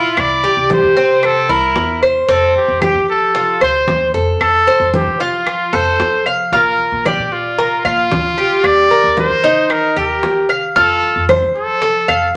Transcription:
0.00 0.15 A#2 medium
0.00 0.42 E4 medium
0.00 0.21 F4 medium
0.17 0.43 C2 medium
0.17 0.71 D5 loud
0.17 high bongo medium
0.17 high conga soft
0.17 claves medium
0.44 0.95 G4 medium
0.44 high conga soft
0.57 0.82 C2 medium
0.70 1.27 C5 medium
0.70 high bongo medium
0.70 high conga medium
0.83 1.46 C3 medium
0.97 1.48 C4 medium
0.97 high conga soft
1.23 1.52 A4 medium
1.23 high bongo medium
1.23 high conga soft
1.23 claves medium
1.49 1.75 C2 medium
1.49 2.01 E4 medium
1.49 2.03 A#4 medium
1.49 high conga soft
1.76 2.26 E2 medium
1.76 high bongo medium
1.76 low bongo medium
1.76 high conga soft
2.03 2.28 C5 medium
2.03 claves medium
2.28 2.54 F2 medium
2.28 2.80 C4 medium
2.28 2.54 A4 medium
2.28 high bongo medium
2.28 high conga soft
2.56 2.81 G4 medium
2.56 high conga soft
2.68 2.94 F2 medium
2.82 3.33 G4 medium
2.82 3.07 G4 medium
2.82 high bongo medium
2.82 high conga medium
2.82 claves medium
2.95 3.58 F3 medium
3.08 3.58 A4 medium
3.08 high bongo soft
3.35 3.60 F4 medium
3.35 high bongo medium
3.35 high conga soft
3.61 3.85 D2 medium
3.61 4.13 C5 medium
3.61 4.11 C5 medium
3.61 high bongo soft
3.61 high conga soft
3.61 claves medium
3.87 4.11 D#2 medium
3.87 high bongo medium
3.87 low bongo medium
3.87 high conga medium
4.14 4.38 F2 medium
4.14 4.65 A4 medium
4.14 high bongo soft
4.40 4.66 F2 medium
4.40 4.90 A4 loud
4.40 high bongo medium
4.40 high conga soft
4.40 claves medium
4.67 5.18 C5 medium
4.67 high conga soft
4.80 5.05 F2 medium
4.94 5.23 G4 medium
4.94 high bongo medium
4.94 high conga medium
5.06 5.69 F3 medium
5.20 5.71 F4 medium
5.20 5.76 F4 medium
5.20 high conga soft
5.46 high bongo medium
5.46 high conga soft
5.46 claves medium
5.73 5.98 F2 medium
5.73 6.24 A4 medium
5.73 6.27 C5 medium
5.73 high conga soft
6.00 6.50 F3 medium
6.00 high bongo medium
6.00 low bongo medium
6.00 high conga soft
6.26 6.52 F5 medium
6.26 claves medium
6.52 6.77 A#1 medium
6.52 7.04 F4 medium
6.52 7.02 A#4 medium
6.52 high bongo medium
6.52 high conga soft
6.79 high conga soft
6.92 7.17 A#1 medium
7.05 7.34 G4 medium
7.05 7.57 D5 medium
7.05 high bongo medium
7.05 high conga medium
7.05 claves medium
7.19 7.81 A#2 medium
7.32 7.85 F4 medium
7.32 high bongo soft
7.58 7.84 A#4 medium
7.58 high bongo medium
7.58 high conga soft
7.85 8.10 A#1 medium
7.85 8.67 F4 medium
7.85 8.36 F5 medium
7.85 high bongo soft
7.85 high conga soft
7.85 claves medium
8.11 8.61 D2 medium
8.11 high bongo medium
8.11 low bongo medium
8.11 high conga medium
8.38 8.89 G4 medium
8.38 high bongo soft
8.64 8.89 D#2 medium
8.64 9.18 D5 loud
8.64 high bongo medium
8.64 high conga soft
8.64 claves medium
8.91 9.42 A#4 medium
8.91 high conga soft
9.04 9.29 D#2 medium
9.17 9.73 C5 medium
9.17 high bongo medium
9.17 high conga medium
9.30 9.93 D#3 medium
9.44 9.95 D#4 medium
9.44 high conga soft
9.70 9.97 A#4 medium
9.70 high bongo medium
9.70 high conga soft
9.70 claves medium
9.96 10.22 D#2 medium
9.96 10.48 G4 medium
9.96 10.47 A#4 medium
9.96 high conga soft
10.23 10.74 D#3 medium
10.23 high bongo medium
10.23 low bongo medium
10.23 high conga soft
10.49 10.75 F5 medium
10.49 claves medium
10.76 11.01 F2 medium
10.76 11.27 F4 medium
10.76 11.26 A4 loud
10.76 high bongo medium
10.76 high conga soft
11.03 high conga soft
11.16 11.41 F2 medium
11.29 11.81 C5 medium
11.29 high bongo medium
11.29 high conga medium
11.29 claves medium
11.42 12.05 F3 medium
11.56 12.32 A4 medium
11.56 high bongo soft
11.82 12.08 A4 medium
11.82 high bongo medium
11.82 high conga soft
12.08 12.34 F2 medium
12.08 12.36 F5 medium
12.08 high bongo soft
12.08 high conga soft
12.08 claves medium

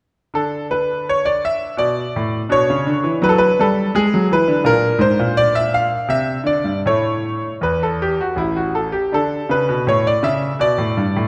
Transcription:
0.34 1.38 D3 medium
0.34 1.74 D4 soft
0.34 0.65 A4 medium
0.71 1.07 B4 medium
1.09 1.26 C#5 medium
1.25 1.43 D5 medium
1.45 1.74 E5 medium
1.77 2.03 B2 medium
1.77 2.40 D5 medium
2.16 2.41 A2 medium
2.49 2.67 B2 medium
2.49 3.92 D4 soft
2.49 3.14 C#5 medium
2.70 2.87 C#3 medium
2.87 3.05 D3 medium
3.04 3.22 E3 medium
3.22 3.49 F#3 medium
3.22 3.31 B4 loud
3.29 3.37 A4 medium
3.38 3.61 B4 medium
3.59 3.86 G3 medium
3.59 3.91 A4 medium
3.95 4.12 G#3 medium
3.95 4.26 G#4 medium
4.14 4.31 F#3 medium
4.31 4.48 E3 medium
4.31 4.62 B4 medium
4.48 4.65 D3 medium
4.64 4.90 A#2 medium
4.64 6.79 D4 soft
4.64 5.01 A#4 loud
4.99 5.17 G#2 medium
4.99 5.37 C5 medium
5.19 5.85 A#2 medium
5.37 5.55 D5 medium
5.55 5.74 E5 medium
5.74 6.10 F5 medium
6.08 6.35 C3 medium
6.08 6.41 E5 medium
6.44 6.63 D3 medium
6.44 6.79 D5 medium
6.64 6.83 G2 soft
6.86 7.40 A2 soft
6.86 7.48 A3 soft
6.86 7.47 E4 soft
6.86 7.52 C#5 medium
7.61 8.15 E2 soft
7.61 7.82 B4 medium
7.83 8.01 A4 medium
8.02 8.20 G4 medium
8.21 8.39 F#4 medium
8.36 8.90 A1 soft
8.36 8.57 E4 medium
8.56 8.76 F#4 medium
8.75 8.95 A4 medium
8.92 9.13 G4 medium
9.12 9.41 D3 medium
9.12 10.57 D4 soft
9.12 9.46 A4 medium
9.49 9.68 C#3 medium
9.49 9.83 B4 medium
9.69 9.87 B2 medium
9.87 10.14 A2 medium
9.87 10.07 C#5 medium
10.07 10.25 D5 medium
10.23 10.50 C#3 medium
10.23 10.61 E5 medium
10.59 10.78 B2 medium
10.59 11.24 D5 medium
10.78 10.97 A2 medium
10.97 11.16 G2 medium
11.16 11.28 A2 medium

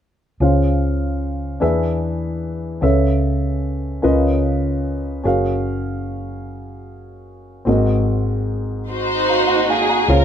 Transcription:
0.40 1.57 C#2 medium
0.40 1.58 C#3 soft
0.40 1.61 C#4 soft
0.40 1.62 F4 soft
0.40 1.60 G#4 soft
0.40 1.62 C5 soft
0.40 1.62 F5 medium
1.60 2.79 E2 medium
1.60 2.78 E3 medium
1.60 2.82 D4 medium
1.60 2.82 E4 soft
1.60 2.81 G#4 medium
1.60 2.82 B4 soft
1.60 2.81 E5 medium
2.81 3.99 C#2 medium
2.81 3.99 C#3 soft
2.81 4.01 C#4 soft
2.81 4.03 G#4 soft
2.81 4.03 A4 soft
2.81 4.02 B4 soft
2.81 4.04 E5 medium
4.02 5.21 C#2 medium
4.02 5.20 C#3 medium
4.02 5.22 C#4 medium
4.02 5.24 F4 soft
4.02 5.24 A#4 soft
4.02 5.25 B4 medium
4.02 5.25 D#5 medium
5.24 7.63 F#1 medium
5.24 7.62 C#4 medium
5.24 7.63 F#4 soft
5.24 7.63 G#4 soft
5.24 7.64 A#4 soft
5.24 7.64 F5 medium
7.65 10.05 G#1 medium
7.65 8.84 G#2 soft
7.65 10.05 C4 soft
7.65 10.05 F#4 soft
7.65 10.06 G#4 soft
7.65 10.06 A#4 soft
7.65 9.26 D#5 medium
8.90 10.06 D#4 soft
8.90 10.07 F#4 medium
8.90 9.66 C5 medium
9.29 9.48 F5 soft
9.29 9.66 A#5 soft
9.47 9.67 D#5 soft
9.47 9.67 F#5 soft
9.69 10.07 G#4 medium
9.69 9.89 F5 soft
9.69 9.89 G#5 soft
9.89 10.25 F#5 soft
9.89 10.25 A#5 soft
10.08 10.25 C#2 medium
10.08 10.25 C#3 soft
10.08 10.25 C#4 soft
10.08 10.25 F4 soft
10.08 10.25 F4 medium
10.08 10.25 G#4 soft
10.08 10.25 A#4 medium
10.08 10.25 C5 soft
10.08 10.25 F5 soft

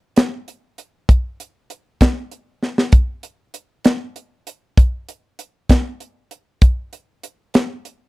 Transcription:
0.16 snare loud
0.16 closed hi-hat medium
0.48 closed hi-hat soft
0.78 closed hi-hat medium
1.09 kick loud
1.09 closed hi-hat medium
1.40 closed hi-hat medium
1.70 closed hi-hat medium
2.01 kick medium
2.01 snare loud
2.01 closed hi-hat medium
2.31 closed hi-hat soft
2.63 snare soft
2.78 snare medium
2.92 kick loud
2.92 closed hi-hat medium
3.23 closed hi-hat medium
3.54 closed hi-hat medium
3.84 snare medium
3.84 closed hi-hat medium
4.16 closed hi-hat medium
4.47 closed hi-hat medium
4.77 kick loud
4.77 closed hi-hat medium
5.09 closed hi-hat medium
5.39 closed hi-hat medium
5.69 kick medium
5.69 snare medium
5.69 closed hi-hat medium
6.00 closed hi-hat soft
6.31 closed hi-hat medium
6.61 kick loud
6.61 closed hi-hat medium
6.93 closed hi-hat medium
7.23 closed hi-hat medium
7.54 snare medium
7.54 closed hi-hat medium
7.85 closed hi-hat medium

